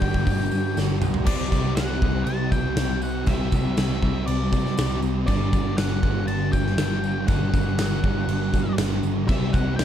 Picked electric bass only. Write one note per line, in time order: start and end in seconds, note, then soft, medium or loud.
0.02 0.25 G1 loud
0.27 0.50 G1 loud
0.52 0.75 G2 loud
0.77 1.00 G1 medium
1.02 1.27 B1 medium
1.27 1.50 C2 medium
1.52 1.75 C2 medium
1.76 2.00 C2 medium
2.02 2.25 C2 loud
2.26 2.49 C2 loud
2.52 2.75 C2 medium
2.76 3.23 C2 medium
3.27 3.50 C2 loud
3.52 3.75 C2 medium
3.77 4.00 C2 loud
4.02 4.25 C2 loud
4.28 4.51 C2 loud
4.53 4.76 C3 loud
4.79 5.01 C2 medium
5.03 5.26 C2 medium
5.28 5.51 G1 medium
5.53 5.76 G1 loud
5.77 6.01 G1 loud
6.04 6.26 G1 loud
6.26 6.50 G1 loud
6.53 6.76 G1 loud
6.77 7.24 G1 loud
7.29 7.51 G1 loud
7.54 7.76 G1 medium
7.78 8.01 G1 medium
8.04 8.26 G1 loud
8.28 8.51 G1 loud
8.54 8.76 G2 medium
8.78 9.01 G1 loud
9.03 9.29 G1 medium
9.29 9.51 C2 medium
9.54 9.77 C2 loud
9.78 9.85 C2 loud